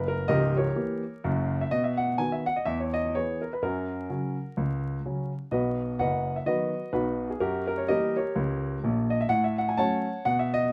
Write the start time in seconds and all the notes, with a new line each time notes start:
Already playing: F#1 F#2 B4
0.08 A#4
0.28 C#1 C#2 G4 A#4 D#5
0.57 G4 A#4 C#5
0.76 E3 A#3 G4
1.24 F#1 F#2
1.61 E5
1.71 B2 D#5
1.84 E5
1.97 F#5
2.18 D#3 B3 F#4 G#5
2.32 E5
2.46 F#5
2.56 D#5
2.65 E2 E5
2.80 C#5
2.94 D#5
3.15 E3 B3 G#4 C#5
3.42 A#4
3.53 B4
3.62 F#2 C#4 F#4 A#4
4.10 C#3 F#3 C#4
4.57 C#2
5.05 C#3 F#3 C#4
5.51 B1 B2 F#4 B4 D#5
5.99 F#1 F#2 B4 D#5 F#5
6.36 E5
6.46 D#3 F#3 B3 F#4 B4 D#5
6.93 B1 B2 D#4 F#4 B4
7.30 G#4
7.40 F#2 F#4 G4 A#4
7.68 A#4
7.78 C#5
7.88 E3 G3 A#3 G4 A#4 D#5
8.16 G4 A#4 C#5
8.35 C#2
8.83 A#1 A#2
9.10 D#5
9.21 E5
9.29 A2 F#5
9.44 E5
9.58 F#5
9.69 G#5
9.78 F#3 A3 C#4 C#5 F#5 A5
10.25 B2 F#5
10.39 E5
10.54 D#5